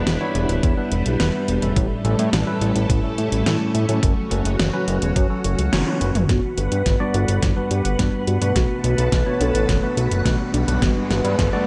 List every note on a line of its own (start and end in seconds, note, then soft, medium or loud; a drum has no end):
0.00 3.99 G3 medium
0.00 1.72 B3 medium
0.00 1.73 D4 medium
0.00 1.74 E4 medium
0.00 1.72 B4 medium
0.07 0.18 E1 loud
0.07 snare loud
0.07 closed hi-hat medium
0.21 0.74 G3 loud
0.21 0.74 B3 medium
0.21 0.74 D4 medium
0.21 0.74 E4 medium
0.21 0.74 C#5 loud
0.35 0.46 E1 medium
0.35 closed hi-hat medium
0.49 0.60 D1 medium
0.49 closed hi-hat medium
0.63 0.74 E2 loud
0.63 kick loud
0.63 closed hi-hat medium
0.77 1.17 G3 medium
0.77 1.17 B3 medium
0.77 1.17 D4 medium
0.77 1.17 E4 medium
0.77 1.17 B4 medium
0.92 1.03 E1 medium
0.92 closed hi-hat medium
1.06 1.17 B1 medium
1.06 closed hi-hat medium
1.20 1.31 E1 loud
1.20 1.59 G3 medium
1.20 1.59 B3 medium
1.20 1.59 D4 medium
1.20 1.59 E4 medium
1.20 1.59 B4 medium
1.20 snare loud
1.20 closed hi-hat medium
1.48 1.59 E1 medium
1.48 closed hi-hat medium
1.62 1.73 E1 medium
1.62 2.01 A2 medium
1.62 2.01 G3 medium
1.62 2.01 A3 medium
1.62 2.01 C#4 medium
1.62 2.01 E4 medium
1.62 2.01 A4 medium
1.62 closed hi-hat medium
1.76 1.88 A1 loud
1.76 6.25 A3 medium
1.76 6.25 C#4 medium
1.76 4.01 E4 medium
1.76 4.01 A4 medium
1.76 kick loud
1.76 closed hi-hat medium
2.05 2.16 A1 medium
2.05 2.21 A2 medium
2.05 2.21 G3 medium
2.05 2.21 A3 medium
2.05 2.21 C#4 medium
2.05 2.21 E4 medium
2.05 2.21 A4 medium
2.05 closed hi-hat medium
2.19 2.30 A2 medium
2.19 closed hi-hat medium
2.33 2.44 A1 loud
2.33 snare loud
2.33 closed hi-hat medium
2.47 3.00 A2 loud
2.47 3.00 G3 medium
2.47 3.00 A3 medium
2.47 3.00 C#4 medium
2.47 3.00 E4 medium
2.47 3.00 B4 loud
2.61 2.72 A1 medium
2.61 closed hi-hat medium
2.76 2.87 A1 medium
2.76 closed hi-hat medium
2.90 3.01 A1 loud
2.90 kick loud
2.90 closed hi-hat medium
3.04 3.43 A2 medium
3.04 3.43 G3 medium
3.04 3.43 A3 medium
3.04 3.43 C#4 medium
3.04 3.43 E4 medium
3.04 3.43 A4 medium
3.18 3.29 A2 medium
3.18 closed hi-hat medium
3.32 3.43 A1 medium
3.32 closed hi-hat medium
3.46 3.85 A2 medium
3.46 3.57 A2 loud
3.46 3.85 G3 medium
3.46 3.85 A3 medium
3.46 3.85 C#4 medium
3.46 3.85 E4 medium
3.46 3.85 A4 medium
3.46 snare loud
3.46 closed hi-hat medium
3.75 3.86 A2 medium
3.75 closed hi-hat medium
3.89 4.00 A2 medium
3.89 4.28 F#3 medium
3.89 4.28 C#4 medium
3.89 4.28 F#4 medium
3.89 4.28 A4 medium
3.89 closed hi-hat medium
4.03 4.14 F#1 loud
4.03 6.27 F#4 medium
4.03 kick loud
4.03 closed hi-hat medium
4.31 4.42 F#1 medium
4.31 4.48 F#3 medium
4.31 4.48 C#4 medium
4.31 4.48 F#4 medium
4.31 4.48 A4 medium
4.31 closed hi-hat medium
4.45 4.56 F#1 medium
4.45 closed hi-hat medium
4.59 4.71 F#1 loud
4.59 snare loud
4.59 closed hi-hat medium
4.74 5.27 F#3 loud
4.74 5.27 C#4 medium
4.74 5.27 F#4 medium
4.74 5.27 B4 loud
4.88 4.99 F#1 loud
4.88 closed hi-hat medium
5.02 5.13 E1 medium
5.02 closed hi-hat medium
5.16 5.27 F#2 loud
5.16 kick loud
5.16 closed hi-hat medium
5.30 5.69 F#3 medium
5.30 5.69 C#4 medium
5.30 5.69 F#4 medium
5.30 5.69 A4 medium
5.44 5.56 F#1 medium
5.44 closed hi-hat medium
5.59 5.70 C#2 medium
5.59 closed hi-hat medium
5.73 5.84 F#1 loud
5.73 5.97 F#3 loud
5.73 5.97 C#4 medium
5.73 5.97 F#4 medium
5.73 5.97 C#5 loud
5.73 snare loud
5.73 closed hi-hat medium
5.73 high tom medium
5.87 high tom medium
6.01 6.12 F#1 medium
6.01 6.18 C#4 medium
6.01 6.18 F#4 medium
6.01 6.18 B4 loud
6.01 closed hi-hat medium
6.15 6.26 F#1 medium
6.15 closed hi-hat medium
6.15 mid tom medium
6.29 6.40 G1 loud
6.29 6.42 B3 medium
6.29 6.59 F#4 loud
6.29 11.67 B4 medium
6.29 11.67 F#5 medium
6.29 kick loud
6.29 snare soft
6.29 closed hi-hat medium
6.29 riser medium
6.58 6.69 G1 medium
6.58 6.74 G2 medium
6.58 6.74 G3 medium
6.58 6.74 B3 medium
6.58 6.74 D4 medium
6.58 6.74 F#4 medium
6.58 6.71 G4 medium
6.58 6.74 B4 medium
6.58 7.16 B4 loud
6.58 closed hi-hat medium
6.72 6.83 G2 medium
6.72 closed hi-hat medium
6.86 6.97 G1 loud
6.86 6.99 B3 medium
6.86 kick loud
6.86 snare soft
6.86 closed hi-hat loud
7.00 7.53 G2 loud
7.00 7.53 G3 medium
7.00 7.53 B3 medium
7.00 7.53 D4 medium
7.00 7.53 F#4 medium
7.00 7.53 D5 loud
7.14 7.25 G1 medium
7.14 7.41 F#4 medium
7.14 7.71 A4 loud
7.14 closed hi-hat medium
7.28 7.39 G1 medium
7.28 closed hi-hat medium
7.43 7.54 G1 loud
7.43 7.55 B3 medium
7.43 kick medium
7.43 snare medium
7.43 closed hi-hat medium
7.57 7.96 G2 medium
7.57 7.96 G3 medium
7.57 7.96 B3 medium
7.57 7.96 D4 medium
7.57 7.96 F#4 medium
7.57 7.96 B4 medium
7.71 7.82 G2 medium
7.71 7.84 G4 medium
7.71 8.24 G4 medium
7.71 closed hi-hat medium
7.85 7.96 G1 medium
7.85 closed hi-hat medium
7.99 8.38 G2 medium
7.99 8.10 G2 loud
7.99 8.38 G3 medium
7.99 8.38 B3 medium
7.99 8.12 B3 medium
7.99 8.38 D4 medium
7.99 8.38 F#4 medium
7.99 8.38 B4 medium
7.99 kick medium
7.99 snare medium
7.99 closed hi-hat medium
8.27 8.38 G2 loud
8.27 8.54 F#4 medium
8.27 closed hi-hat medium
8.42 8.53 G2 medium
8.42 8.81 B2 medium
8.42 8.81 A3 medium
8.42 8.81 B3 medium
8.42 8.81 D4 medium
8.42 8.81 F#4 medium
8.42 8.81 B4 medium
8.42 closed hi-hat medium
8.56 8.67 B1 loud
8.56 8.69 A3 medium
8.56 8.82 F#4 loud
8.56 10.80 A5 medium
8.56 kick loud
8.56 snare medium
8.56 closed hi-hat medium
8.84 8.95 B1 medium
8.84 9.01 B2 medium
8.84 9.01 A3 medium
8.84 9.01 B3 medium
8.84 9.01 D4 medium
8.84 9.01 F#4 medium
8.84 8.97 F#4 medium
8.84 9.01 B4 medium
8.84 9.42 B4 loud
8.84 closed hi-hat medium
8.98 9.09 B1 medium
8.98 closed hi-hat medium
9.12 9.23 B1 loud
9.12 9.25 A3 medium
9.12 kick loud
9.12 snare medium
9.12 closed hi-hat medium
9.26 9.80 B2 loud
9.26 9.80 A3 medium
9.26 9.80 B3 medium
9.26 9.80 D4 medium
9.26 9.80 F#4 medium
9.26 9.80 C#5 loud
9.40 9.52 B1 medium
9.40 9.68 D4 medium
9.40 9.99 A4 loud
9.40 closed hi-hat medium
9.55 9.66 A1 medium
9.55 closed hi-hat medium
9.69 9.80 F#1 loud
9.69 9.82 A3 medium
9.69 kick loud
9.69 snare medium
9.69 closed hi-hat loud
9.83 10.22 B2 medium
9.83 10.22 A3 medium
9.83 10.22 B3 medium
9.83 10.22 D4 medium
9.83 10.22 F#4 medium
9.83 10.22 B4 medium
9.97 10.08 B1 loud
9.97 10.54 F#4 medium
9.97 10.10 F#4 medium
9.97 closed hi-hat medium
10.11 10.22 F#1 medium
10.11 closed hi-hat medium
10.25 10.37 B1 loud
10.25 10.65 B2 medium
10.25 10.65 A3 medium
10.25 10.38 A3 medium
10.25 10.65 B3 medium
10.25 10.65 D4 medium
10.25 10.65 F#4 medium
10.25 10.65 B4 medium
10.25 kick loud
10.25 snare medium
10.25 closed hi-hat loud
10.54 10.65 B1 loud
10.54 10.81 D4 medium
10.54 closed hi-hat medium
10.68 10.79 B1 medium
10.68 11.07 G2 medium
10.68 11.07 G3 medium
10.68 11.07 B3 medium
10.68 11.07 D4 medium
10.68 11.07 F#4 medium
10.68 11.07 B4 medium
10.68 closed hi-hat medium
10.82 10.93 G1 loud
10.82 10.95 B3 medium
10.82 11.12 F#4 loud
10.82 kick loud
10.82 snare medium
10.82 closed hi-hat medium
11.10 11.21 G1 medium
11.10 11.27 G2 medium
11.10 11.27 G3 medium
11.10 11.27 B3 medium
11.10 11.27 D4 medium
11.10 11.27 F#4 medium
11.10 11.23 G4 medium
11.10 11.67 B4 loud
11.10 11.27 B4 medium
11.10 snare medium
11.10 closed hi-hat medium
11.24 11.36 G2 medium
11.24 closed hi-hat medium
11.39 11.50 G1 loud
11.39 11.52 B3 medium
11.39 kick loud
11.39 snare medium
11.39 closed hi-hat medium
11.53 11.67 G2 loud
11.53 11.67 G3 medium
11.53 11.67 B3 medium
11.53 11.67 D4 medium
11.53 11.67 F#4 medium
11.53 11.67 D5 loud